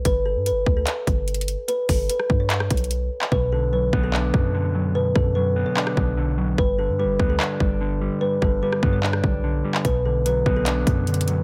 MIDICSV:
0, 0, Header, 1, 5, 480
1, 0, Start_track
1, 0, Tempo, 408163
1, 61, Time_signature, 4, 2, 24, 8
1, 13446, End_track
2, 0, Start_track
2, 0, Title_t, "Kalimba"
2, 0, Program_c, 0, 108
2, 66, Note_on_c, 0, 71, 102
2, 283, Note_off_c, 0, 71, 0
2, 299, Note_on_c, 0, 69, 78
2, 520, Note_off_c, 0, 69, 0
2, 547, Note_on_c, 0, 71, 87
2, 883, Note_off_c, 0, 71, 0
2, 901, Note_on_c, 0, 69, 72
2, 1934, Note_off_c, 0, 69, 0
2, 1976, Note_on_c, 0, 71, 99
2, 2198, Note_off_c, 0, 71, 0
2, 2221, Note_on_c, 0, 69, 90
2, 2440, Note_off_c, 0, 69, 0
2, 2466, Note_on_c, 0, 71, 80
2, 2803, Note_off_c, 0, 71, 0
2, 2821, Note_on_c, 0, 73, 68
2, 3854, Note_off_c, 0, 73, 0
2, 3902, Note_on_c, 0, 71, 104
2, 4121, Note_off_c, 0, 71, 0
2, 4143, Note_on_c, 0, 69, 77
2, 4362, Note_off_c, 0, 69, 0
2, 4386, Note_on_c, 0, 71, 85
2, 4723, Note_off_c, 0, 71, 0
2, 4745, Note_on_c, 0, 69, 78
2, 5776, Note_off_c, 0, 69, 0
2, 5823, Note_on_c, 0, 71, 102
2, 6041, Note_off_c, 0, 71, 0
2, 6060, Note_on_c, 0, 69, 90
2, 6280, Note_off_c, 0, 69, 0
2, 6294, Note_on_c, 0, 71, 80
2, 6636, Note_off_c, 0, 71, 0
2, 6656, Note_on_c, 0, 73, 71
2, 7692, Note_off_c, 0, 73, 0
2, 7746, Note_on_c, 0, 71, 107
2, 7963, Note_off_c, 0, 71, 0
2, 7979, Note_on_c, 0, 69, 78
2, 8199, Note_off_c, 0, 69, 0
2, 8227, Note_on_c, 0, 71, 88
2, 8563, Note_off_c, 0, 71, 0
2, 8581, Note_on_c, 0, 69, 76
2, 9614, Note_off_c, 0, 69, 0
2, 9655, Note_on_c, 0, 71, 96
2, 9877, Note_off_c, 0, 71, 0
2, 9899, Note_on_c, 0, 69, 93
2, 10119, Note_off_c, 0, 69, 0
2, 10145, Note_on_c, 0, 71, 78
2, 10482, Note_off_c, 0, 71, 0
2, 10500, Note_on_c, 0, 73, 70
2, 11534, Note_off_c, 0, 73, 0
2, 11583, Note_on_c, 0, 71, 101
2, 11801, Note_off_c, 0, 71, 0
2, 11824, Note_on_c, 0, 69, 80
2, 12042, Note_off_c, 0, 69, 0
2, 12065, Note_on_c, 0, 71, 86
2, 12402, Note_off_c, 0, 71, 0
2, 12424, Note_on_c, 0, 69, 79
2, 13446, Note_off_c, 0, 69, 0
2, 13446, End_track
3, 0, Start_track
3, 0, Title_t, "Clean electric guitar"
3, 0, Program_c, 1, 27
3, 3901, Note_on_c, 1, 47, 96
3, 4141, Note_on_c, 1, 50, 76
3, 4381, Note_on_c, 1, 54, 76
3, 4622, Note_on_c, 1, 59, 98
3, 4861, Note_on_c, 1, 62, 89
3, 5087, Note_off_c, 1, 47, 0
3, 5102, Note_on_c, 1, 47, 73
3, 5327, Note_off_c, 1, 50, 0
3, 5341, Note_on_c, 1, 50, 89
3, 5568, Note_off_c, 1, 54, 0
3, 5582, Note_on_c, 1, 54, 78
3, 5807, Note_off_c, 1, 47, 0
3, 5821, Note_on_c, 1, 47, 91
3, 5822, Note_off_c, 1, 59, 0
3, 6046, Note_off_c, 1, 50, 0
3, 6060, Note_on_c, 1, 50, 76
3, 6061, Note_off_c, 1, 62, 0
3, 6286, Note_off_c, 1, 54, 0
3, 6301, Note_on_c, 1, 54, 84
3, 6540, Note_on_c, 1, 59, 93
3, 6780, Note_on_c, 1, 62, 83
3, 7006, Note_off_c, 1, 47, 0
3, 7020, Note_on_c, 1, 47, 73
3, 7247, Note_off_c, 1, 50, 0
3, 7261, Note_on_c, 1, 50, 92
3, 7487, Note_off_c, 1, 54, 0
3, 7502, Note_on_c, 1, 54, 80
3, 7736, Note_off_c, 1, 47, 0
3, 7741, Note_off_c, 1, 50, 0
3, 7741, Note_off_c, 1, 59, 0
3, 7741, Note_off_c, 1, 62, 0
3, 7741, Note_on_c, 1, 43, 90
3, 7742, Note_off_c, 1, 54, 0
3, 7981, Note_on_c, 1, 50, 78
3, 8220, Note_on_c, 1, 55, 79
3, 8461, Note_on_c, 1, 59, 92
3, 8696, Note_off_c, 1, 59, 0
3, 8701, Note_on_c, 1, 62, 81
3, 8927, Note_off_c, 1, 43, 0
3, 8941, Note_on_c, 1, 43, 75
3, 9168, Note_off_c, 1, 50, 0
3, 9182, Note_on_c, 1, 50, 88
3, 9407, Note_off_c, 1, 55, 0
3, 9422, Note_on_c, 1, 55, 77
3, 9647, Note_off_c, 1, 43, 0
3, 9661, Note_on_c, 1, 43, 94
3, 9888, Note_off_c, 1, 50, 0
3, 9901, Note_off_c, 1, 62, 0
3, 9902, Note_on_c, 1, 50, 80
3, 10128, Note_off_c, 1, 55, 0
3, 10142, Note_on_c, 1, 55, 88
3, 10382, Note_on_c, 1, 59, 93
3, 10617, Note_off_c, 1, 59, 0
3, 10622, Note_on_c, 1, 62, 82
3, 10848, Note_off_c, 1, 43, 0
3, 10862, Note_on_c, 1, 43, 71
3, 11086, Note_off_c, 1, 50, 0
3, 11100, Note_on_c, 1, 50, 92
3, 11327, Note_off_c, 1, 55, 0
3, 11341, Note_on_c, 1, 55, 76
3, 11576, Note_off_c, 1, 43, 0
3, 11581, Note_off_c, 1, 50, 0
3, 11581, Note_off_c, 1, 55, 0
3, 11581, Note_on_c, 1, 47, 93
3, 11582, Note_off_c, 1, 62, 0
3, 11822, Note_on_c, 1, 50, 72
3, 12061, Note_on_c, 1, 54, 77
3, 12300, Note_on_c, 1, 59, 101
3, 12541, Note_on_c, 1, 62, 90
3, 12767, Note_off_c, 1, 47, 0
3, 12781, Note_on_c, 1, 47, 78
3, 13007, Note_off_c, 1, 50, 0
3, 13021, Note_on_c, 1, 50, 91
3, 13247, Note_off_c, 1, 54, 0
3, 13261, Note_on_c, 1, 54, 81
3, 13446, Note_off_c, 1, 47, 0
3, 13446, Note_off_c, 1, 50, 0
3, 13446, Note_off_c, 1, 54, 0
3, 13446, Note_off_c, 1, 59, 0
3, 13446, Note_off_c, 1, 62, 0
3, 13446, End_track
4, 0, Start_track
4, 0, Title_t, "808-style bass"
4, 0, Program_c, 2, 38
4, 61, Note_on_c, 2, 31, 106
4, 421, Note_on_c, 2, 43, 101
4, 439, Note_off_c, 2, 31, 0
4, 601, Note_on_c, 2, 31, 99
4, 618, Note_off_c, 2, 43, 0
4, 772, Note_off_c, 2, 31, 0
4, 781, Note_on_c, 2, 38, 105
4, 1012, Note_off_c, 2, 38, 0
4, 1261, Note_on_c, 2, 31, 106
4, 1837, Note_off_c, 2, 31, 0
4, 2223, Note_on_c, 2, 31, 104
4, 2453, Note_off_c, 2, 31, 0
4, 2702, Note_on_c, 2, 43, 104
4, 3163, Note_off_c, 2, 43, 0
4, 3182, Note_on_c, 2, 35, 105
4, 3643, Note_off_c, 2, 35, 0
4, 3901, Note_on_c, 2, 35, 110
4, 4593, Note_off_c, 2, 35, 0
4, 4621, Note_on_c, 2, 35, 103
4, 5082, Note_off_c, 2, 35, 0
4, 5101, Note_on_c, 2, 42, 104
4, 6023, Note_off_c, 2, 42, 0
4, 6063, Note_on_c, 2, 42, 106
4, 6638, Note_off_c, 2, 42, 0
4, 7022, Note_on_c, 2, 35, 103
4, 7713, Note_off_c, 2, 35, 0
4, 7742, Note_on_c, 2, 31, 107
4, 8101, Note_on_c, 2, 43, 96
4, 8119, Note_off_c, 2, 31, 0
4, 8282, Note_on_c, 2, 31, 97
4, 8299, Note_off_c, 2, 43, 0
4, 8453, Note_off_c, 2, 31, 0
4, 8462, Note_on_c, 2, 38, 107
4, 8692, Note_off_c, 2, 38, 0
4, 8942, Note_on_c, 2, 31, 106
4, 9518, Note_off_c, 2, 31, 0
4, 9903, Note_on_c, 2, 31, 105
4, 10133, Note_off_c, 2, 31, 0
4, 10381, Note_on_c, 2, 43, 106
4, 10842, Note_off_c, 2, 43, 0
4, 10862, Note_on_c, 2, 35, 105
4, 11322, Note_off_c, 2, 35, 0
4, 11581, Note_on_c, 2, 35, 114
4, 12273, Note_off_c, 2, 35, 0
4, 12301, Note_on_c, 2, 35, 103
4, 12762, Note_off_c, 2, 35, 0
4, 12781, Note_on_c, 2, 42, 103
4, 13446, Note_off_c, 2, 42, 0
4, 13446, End_track
5, 0, Start_track
5, 0, Title_t, "Drums"
5, 60, Note_on_c, 9, 42, 90
5, 61, Note_on_c, 9, 36, 105
5, 178, Note_off_c, 9, 42, 0
5, 179, Note_off_c, 9, 36, 0
5, 543, Note_on_c, 9, 42, 83
5, 661, Note_off_c, 9, 42, 0
5, 781, Note_on_c, 9, 36, 91
5, 899, Note_off_c, 9, 36, 0
5, 1019, Note_on_c, 9, 42, 76
5, 1021, Note_on_c, 9, 39, 109
5, 1137, Note_off_c, 9, 42, 0
5, 1139, Note_off_c, 9, 39, 0
5, 1261, Note_on_c, 9, 36, 97
5, 1263, Note_on_c, 9, 42, 68
5, 1379, Note_off_c, 9, 36, 0
5, 1380, Note_off_c, 9, 42, 0
5, 1501, Note_on_c, 9, 42, 43
5, 1581, Note_off_c, 9, 42, 0
5, 1581, Note_on_c, 9, 42, 57
5, 1661, Note_off_c, 9, 42, 0
5, 1661, Note_on_c, 9, 42, 71
5, 1742, Note_off_c, 9, 42, 0
5, 1742, Note_on_c, 9, 42, 71
5, 1859, Note_off_c, 9, 42, 0
5, 1981, Note_on_c, 9, 42, 88
5, 2098, Note_off_c, 9, 42, 0
5, 2222, Note_on_c, 9, 36, 92
5, 2222, Note_on_c, 9, 46, 96
5, 2340, Note_off_c, 9, 36, 0
5, 2340, Note_off_c, 9, 46, 0
5, 2464, Note_on_c, 9, 42, 82
5, 2581, Note_off_c, 9, 42, 0
5, 2582, Note_on_c, 9, 37, 68
5, 2699, Note_off_c, 9, 37, 0
5, 2702, Note_on_c, 9, 36, 90
5, 2819, Note_off_c, 9, 36, 0
5, 2940, Note_on_c, 9, 42, 72
5, 2942, Note_on_c, 9, 39, 110
5, 3057, Note_off_c, 9, 42, 0
5, 3059, Note_off_c, 9, 39, 0
5, 3061, Note_on_c, 9, 37, 99
5, 3178, Note_off_c, 9, 37, 0
5, 3181, Note_on_c, 9, 42, 72
5, 3182, Note_on_c, 9, 36, 94
5, 3262, Note_off_c, 9, 42, 0
5, 3262, Note_on_c, 9, 42, 55
5, 3299, Note_off_c, 9, 36, 0
5, 3341, Note_off_c, 9, 42, 0
5, 3341, Note_on_c, 9, 42, 42
5, 3419, Note_off_c, 9, 42, 0
5, 3419, Note_on_c, 9, 42, 68
5, 3537, Note_off_c, 9, 42, 0
5, 3781, Note_on_c, 9, 39, 99
5, 3898, Note_off_c, 9, 39, 0
5, 3902, Note_on_c, 9, 36, 102
5, 4019, Note_off_c, 9, 36, 0
5, 4622, Note_on_c, 9, 36, 90
5, 4739, Note_off_c, 9, 36, 0
5, 4863, Note_on_c, 9, 39, 112
5, 4980, Note_off_c, 9, 39, 0
5, 5102, Note_on_c, 9, 36, 93
5, 5219, Note_off_c, 9, 36, 0
5, 6063, Note_on_c, 9, 36, 94
5, 6180, Note_off_c, 9, 36, 0
5, 6782, Note_on_c, 9, 39, 115
5, 6900, Note_off_c, 9, 39, 0
5, 6901, Note_on_c, 9, 37, 99
5, 7019, Note_off_c, 9, 37, 0
5, 7022, Note_on_c, 9, 36, 92
5, 7140, Note_off_c, 9, 36, 0
5, 7742, Note_on_c, 9, 36, 103
5, 7859, Note_off_c, 9, 36, 0
5, 8462, Note_on_c, 9, 36, 90
5, 8579, Note_off_c, 9, 36, 0
5, 8702, Note_on_c, 9, 39, 115
5, 8820, Note_off_c, 9, 39, 0
5, 8942, Note_on_c, 9, 36, 93
5, 9059, Note_off_c, 9, 36, 0
5, 9903, Note_on_c, 9, 36, 93
5, 10020, Note_off_c, 9, 36, 0
5, 10261, Note_on_c, 9, 37, 68
5, 10379, Note_off_c, 9, 37, 0
5, 10381, Note_on_c, 9, 36, 93
5, 10499, Note_off_c, 9, 36, 0
5, 10622, Note_on_c, 9, 39, 115
5, 10739, Note_off_c, 9, 39, 0
5, 10740, Note_on_c, 9, 37, 101
5, 10858, Note_off_c, 9, 37, 0
5, 10861, Note_on_c, 9, 36, 93
5, 10979, Note_off_c, 9, 36, 0
5, 11460, Note_on_c, 9, 39, 100
5, 11578, Note_off_c, 9, 39, 0
5, 11581, Note_on_c, 9, 36, 106
5, 11581, Note_on_c, 9, 42, 90
5, 11699, Note_off_c, 9, 36, 0
5, 11699, Note_off_c, 9, 42, 0
5, 12064, Note_on_c, 9, 42, 83
5, 12181, Note_off_c, 9, 42, 0
5, 12301, Note_on_c, 9, 36, 89
5, 12419, Note_off_c, 9, 36, 0
5, 12539, Note_on_c, 9, 42, 73
5, 12541, Note_on_c, 9, 39, 113
5, 12657, Note_off_c, 9, 42, 0
5, 12659, Note_off_c, 9, 39, 0
5, 12781, Note_on_c, 9, 36, 94
5, 12783, Note_on_c, 9, 42, 69
5, 12899, Note_off_c, 9, 36, 0
5, 12900, Note_off_c, 9, 42, 0
5, 13020, Note_on_c, 9, 42, 42
5, 13101, Note_off_c, 9, 42, 0
5, 13101, Note_on_c, 9, 42, 58
5, 13181, Note_off_c, 9, 42, 0
5, 13181, Note_on_c, 9, 42, 71
5, 13261, Note_off_c, 9, 42, 0
5, 13261, Note_on_c, 9, 42, 75
5, 13379, Note_off_c, 9, 42, 0
5, 13446, End_track
0, 0, End_of_file